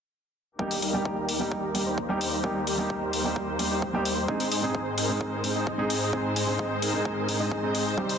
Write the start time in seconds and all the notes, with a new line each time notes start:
0.59 D#2 D#3 G3 A#3 D#4 G4 A#4, kick
0.71 open hi-hat
0.82 G3 A#3 D#4 G4 A#4, open hi-hat
0.93 G3 A#3 D#4 G4
1.05 G3 A#3 D#4 G4 A#4, kick
1.28 G3 A#3 D#4 G4 A#4, open hi-hat
1.39 G3 A#3 D#4 G4
1.52 kick
1.74 G3 A#3 D#4 G4, open hi-hat
1.86 G3 A#3 D#4 G4 C5
1.98 kick
2.09 G3 A#3 D#4 G4 C5
2.21 open hi-hat
2.43 G3 A#3 D#4 G4 A#4 C5, kick
2.67 G3 A#3 D#4 G4 A#4, open hi-hat
2.78 G3 A#3 D#4 G4
2.90 G3 A#3 D#4 G4 A#4, kick
3.13 G3 A#3 D#4 G4 A#4, open hi-hat
3.24 G3 A#3 D#4 G4
3.36 kick
3.59 G3 A#3 D#4 G4, open hi-hat
3.71 G3 A#3 D#4 G4 C5
3.82 kick
3.93 G3 A#3 D#4 G4 C5
4.05 open hi-hat
4.28 G#2 G#3 C4 D#4 G#4 C5, kick
4.40 open hi-hat
4.51 G#3 C4 D#4 G#4 C5, open hi-hat
4.62 G#3 C4 D#4 G#4
4.74 G#3 C4 D#4 G#4 C5, kick
4.98 G#3 C4 D#4 G#4 A#4, open hi-hat
5.09 G#3 C4 D#4 G#4
5.21 kick
5.43 G#3 C4 D#4 G#4, open hi-hat
5.55 G#3 C4 D#4 G#4 D#5
5.67 kick
5.78 G#3 C4 D#4 G#4 D#5
5.90 open hi-hat
6.12 G#3 C4 D#4 G#4 C5, kick
6.36 G#3 C4 D#4 G#4 C5, open hi-hat
6.47 G#3 C4 D#4 G#4
6.59 G#3 C4 D#4 G#4 C5, kick
6.82 G#3 C4 D#4 G#4 A#4, open hi-hat
6.93 G#3 C4 D#4 G#4
7.05 kick
7.28 G#3 C4 D#4 G#4, open hi-hat
7.39 G#3 C4 D#4 G#4 D#5
7.51 kick
7.62 G#3 C4 D#4 G#4 D#5
7.75 open hi-hat
7.97 C3 G3 C4 D#4 G4 C5, kick
8.09 open hi-hat